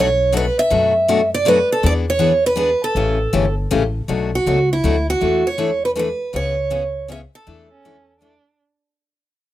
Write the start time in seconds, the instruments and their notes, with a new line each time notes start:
Already playing: upright bass B1
0.00 steel-string acoustic guitar C#5
0.32 steel-string acoustic guitar B2 F#3 A3 D4 F#4
0.37 steel-string acoustic guitar B4
0.59 steel-string acoustic guitar E5
0.70 upright bass F#2, steel-string acoustic guitar B2 F#3 A3 D4 F#4
1.08 steel-string acoustic guitar B2 F#3 A3 D4 F#4
1.34 steel-string acoustic guitar D5
1.45 steel-string acoustic guitar B2 F#3 A3 D4 F#4 B4
1.72 steel-string acoustic guitar A4
1.83 upright bass E2, steel-string acoustic guitar E3 B3 D4 G#4 D5
2.10 steel-string acoustic guitar C#5
2.19 steel-string acoustic guitar E3 B3 D4 G#4
2.46 steel-string acoustic guitar B4
2.56 steel-string acoustic guitar E3 B3 D4 G#4
2.84 steel-string acoustic guitar A4
2.95 upright bass A1, steel-string acoustic guitar C#3 E3 A3 C#4 G4
3.33 upright bass G1, steel-string acoustic guitar C#3 E3 A3 C#4 G4
3.71 upright bass A1, steel-string acoustic guitar C#3 E3 A3 C#4 G4
4.08 upright bass B1, steel-string acoustic guitar B2 F#3 A3 D4 F#4
4.35 steel-string acoustic guitar F#4
4.46 upright bass C#2, steel-string acoustic guitar B2 F#3 A3 D4 F#4
4.73 steel-string acoustic guitar E4
4.83 upright bass D2, steel-string acoustic guitar B2 F#3 A3 D4 F#4
5.10 steel-string acoustic guitar F#4
5.21 upright bass E2, steel-string acoustic guitar E3 A3 D4 E4 A4
5.47 steel-string acoustic guitar C#5
5.58 steel-string acoustic guitar E3 A3 D4 E4 A4
5.85 steel-string acoustic guitar B4
5.96 steel-string acoustic guitar E3 A3 D4 E4 A4 B4
6.33 upright bass C#2, steel-string acoustic guitar C#3 E3 B3 C#4 G#4 C#5
6.70 steel-string acoustic guitar C#3 E3 B3 C#4 G#4
7.08 steel-string acoustic guitar C#3 E3 B3 C#4 G#4 E5
7.35 steel-string acoustic guitar A4
7.47 upright bass E2, steel-string acoustic guitar E3 A3 D4 E4 A4
7.69 violin C#4
7.85 steel-string acoustic guitar E3 A3 D4 E4 A4
8.20 steel-string acoustic guitar E3 A3 D4 E4 A4, violin D4